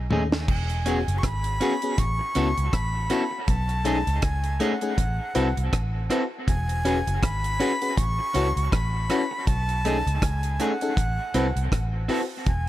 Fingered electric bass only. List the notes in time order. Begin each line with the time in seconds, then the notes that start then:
0.11 D#2
0.48 E1
1.08 F#1
1.24 G#1
1.99 A1
2.36 C#2
2.58 C#2
2.73 A1
3.48 B1
4.07 C#2
4.23 C#2
4.98 A1
5.36 C2
5.57 C2
5.73 A1
6.48 E1
7.07 F#1
7.23 G#1
7.98 A1
8.35 C#2
8.56 C#2
8.73 A1
9.47 B1
10.06 C#2
10.22 C#2
10.97 A1
11.34 C2
11.56 C2
11.72 A1
12.47 E1